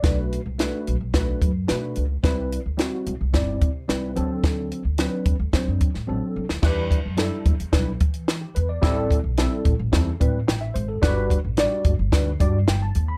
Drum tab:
CC |----------------|----------------|----------------|x---------------|
HH |x-x-x-x-x-x-x-x-|x-x-x-x-x-x-x-x-|x-x-x-x-x-x-----|--x-x-xxx-xxx-x-|
SD |o---o---o---o---|o---o---o---o---|o---o---o--o---o|o---o---o---o---|
BD |o-------o-o-----|o-------o-o-----|o-----o-o-o-----|o-o---o-o-o-----|

CC |----------------|----------------|
HH |x-x-x-x-x-x-x-x-|x-x-x-x-x-x-x-x-|
SD |o---o---o---o---|o---o---o---o---|
BD |o-o---o-o-o-----|o-o---o-o-o-----|